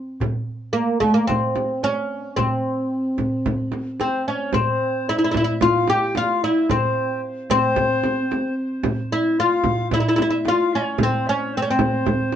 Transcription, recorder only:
4.00 C5
4.26 E5
4.31 C#5
4.53 C5
5.09 E5
5.63 F5
5.90 G5
6.16 F5
6.44 E5
6.72 C5
7.51 C5
9.13 E5
9.39 F5
9.91 E5
10.47 F5
10.73 C#5
11.01 C5
11.27 C#5 E5
11.54 C5
11.68 C5

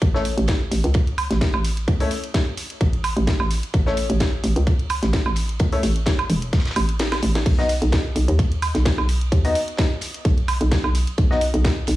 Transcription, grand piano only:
0.14 A3 C#4 E4 C#5
2.00 A3 C#4 E4 C#5
3.86 A3 C#4 E4 C#5
5.72 A3 C#4 E4 C#5
7.58 B3 D#4 F#4 D#5
9.45 B3 D#4 F#4 D#5
11.31 B3 D#4 F#4 D#5

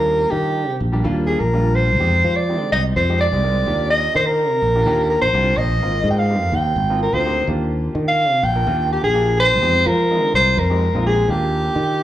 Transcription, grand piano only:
Already playing: G3 A#3 D4 F4
0.92 G3 A#3 D4 G4
1.04 G3 A#3 D4 F4
1.53 G3 A#3 D4 F4
2.00 G#3 C4 D#4 G4
2.49 G#3 C4 D#4 G4
3.09 G#3 C4 D#4 G4
3.32 G#3 C4 D#4 G4
3.43 G#3 C4 D#4 A#4
3.67 A#3 D4 F4 G4
4.75 A#3 D4 F4 G4
4.86 A#3 D4 F4 G4
5.34 A#3 D4 F4 G4
5.82 A#3 C4 D#4 F4
6.29 A#3 C4 D#4 G4
6.89 A#3 C4 D#4 F4
7.12 A#3 C4 D#4 F4
7.25 A#3 C4 D#4 G4
7.48 A#3 D4 F4 G4
8.55 A#3 D4 F4 A#4
8.66 A#3 D4 F4 A#4
9.14 A#3 D4 F4 G4
9.62 G#3 C4 D#4 G4
10.10 G#3 C4 D#4 F4
10.70 G#3 C4 D#4 G4
10.95 G#3 C4 D#4 F4
11.05 G#3 C4 D#4 G4
11.30 A#3 D4 F4 G4

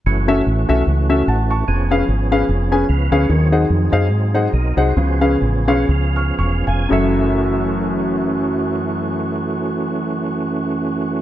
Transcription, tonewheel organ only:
0.06 E3 A3 C#4 F#4
1.68 F3 B3 C#4 G#4
2.89 B4 F5
3.11 G#4 C#5
3.30 F#3 C4 D#4 G#4
4.54 A#4 D#5
4.78 F#4 C5
4.97 F3 B3 C#4 G#4
5.69 C#5
5.91 F5
6.39 F5
6.69 G#5
6.92 E3 A3 C#4 F#4

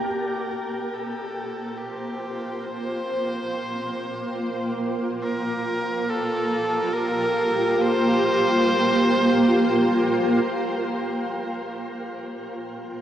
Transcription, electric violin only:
0.05 A#4
0.93 A4
1.78 G4
2.64 C5
5.23 A#4
6.10 A4
6.94 A#4
7.81 C5

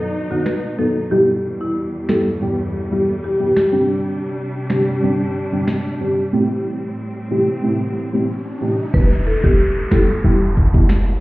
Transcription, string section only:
Already playing: B2 F#3 D#4
1.11 E2 G3
3.72 C3 D4
6.33 A2 C4

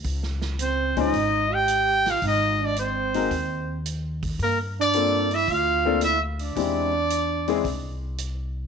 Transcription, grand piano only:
0.97 G#3 C#4 D#4 F4 C5
3.15 G#3 C4 D#4 F#4 A#4
4.94 A#3 C4 D4 F4 A4
5.85 A#3 C4 D4 F4 A4
6.56 G#3 C4 D4 E4 G4
7.48 G#3 C4 D4 E4 G#4

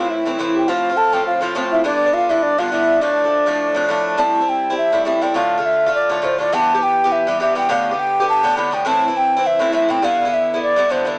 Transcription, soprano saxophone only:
Already playing: F4
0.09 E4
0.54 G4
0.68 F4
0.96 A4
1.26 F4
1.72 E4
1.85 D4
2.13 F4
2.29 E4
2.43 D4
2.59 F4
2.72 E4
3.00 D4

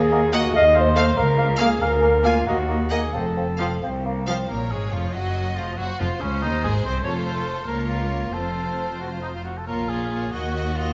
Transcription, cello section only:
Already playing: D#2
0.54 D#2
1.18 C#2
1.82 D2
2.46 D#2
3.15 F2
3.83 C2
4.51 A#2
4.72 G#2
4.93 F2
5.15 F#2
5.58 F2
5.79 F#2
6.00 F2
6.22 C#2
6.43 D#2
6.64 G#2
6.85 C3
7.05 F2
7.69 C#2
8.34 F2
9.68 A#2
10.33 D#2

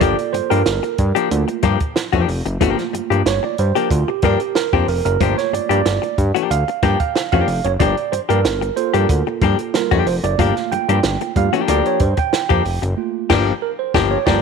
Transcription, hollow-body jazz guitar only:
0.01 F3 A#3 D4 G4
0.19 muted hollow-body jazz guitar stroke
0.33 muted hollow-body jazz guitar stroke
0.50 F3 A#3 D4 G4
0.66 muted hollow-body jazz guitar stroke
0.83 muted hollow-body jazz guitar stroke
1.15 F3 A#3 D4 G4
1.31 muted hollow-body jazz guitar stroke
1.48 muted hollow-body jazz guitar stroke
1.63 F3 A#3 D4 G4
1.81 muted hollow-body jazz guitar stroke
1.96 muted hollow-body jazz guitar stroke
2.13 F3 A#3 D4 G4
2.28 muted hollow-body jazz guitar stroke
2.46 muted hollow-body jazz guitar stroke
2.61 F3 A#3 D4 G4
2.78 muted hollow-body jazz guitar stroke
2.93 muted hollow-body jazz guitar stroke
3.10 F3 A#3 D4 G4
3.26 muted hollow-body jazz guitar stroke
3.43 muted hollow-body jazz guitar stroke
3.75 F3 A#3 D4 G4
3.91 muted hollow-body jazz guitar stroke
4.08 muted hollow-body jazz guitar stroke
4.23 F3 A#3 D4 G4
4.41 muted hollow-body jazz guitar stroke
4.56 muted hollow-body jazz guitar stroke
4.73 F3 A#3 D4 G4
4.89 muted hollow-body jazz guitar stroke
5.06 muted hollow-body jazz guitar stroke
5.21 F3 A#3 D4 G4
5.38 muted hollow-body jazz guitar stroke
5.53 muted hollow-body jazz guitar stroke
5.69 F3 A#3 D4 G4
5.85 muted hollow-body jazz guitar stroke
6.02 muted hollow-body jazz guitar stroke
6.35 F3 A#3 D4 G4
6.51 muted hollow-body jazz guitar stroke
6.68 muted hollow-body jazz guitar stroke
6.83 F3 A#3 D4 G4
7.00 muted hollow-body jazz guitar stroke
7.16 muted hollow-body jazz guitar stroke
7.33 F3 A#3 D4 G4
7.49 muted hollow-body jazz guitar stroke
7.66 muted hollow-body jazz guitar stroke
7.80 F3 A#3 D4 G4
7.99 muted hollow-body jazz guitar stroke
8.12 muted hollow-body jazz guitar stroke
8.29 F3 A#3 D4 G4
8.44 muted hollow-body jazz guitar stroke
8.61 muted hollow-body jazz guitar stroke
8.94 F3 A#3 D4 G4
9.09 muted hollow-body jazz guitar stroke
9.27 muted hollow-body jazz guitar stroke
9.42 F3 A#3 D4 G4
9.60 muted hollow-body jazz guitar stroke
9.75 muted hollow-body jazz guitar stroke
9.91 F3 A#3 D4 G4
10.07 muted hollow-body jazz guitar stroke
10.24 muted hollow-body jazz guitar stroke
10.39 F3 A#3 D4 G4
10.56 muted hollow-body jazz guitar stroke
10.72 muted hollow-body jazz guitar stroke
10.89 F3 A#3 D4 G4
11.04 muted hollow-body jazz guitar stroke
11.21 muted hollow-body jazz guitar stroke
11.53 F3 A#3 D4 G4
11.68 F3 A#3 D4 G4
12.00 muted hollow-body jazz guitar stroke
12.17 muted hollow-body jazz guitar stroke
12.33 muted hollow-body jazz guitar stroke
12.49 F3 A#3 D4 G4
12.65 muted hollow-body jazz guitar stroke
12.82 muted hollow-body jazz guitar stroke
13.30 F3 A#3 D4 G4
13.95 F3 A#3 D4 G4
14.27 F3 A#3 D4 G4

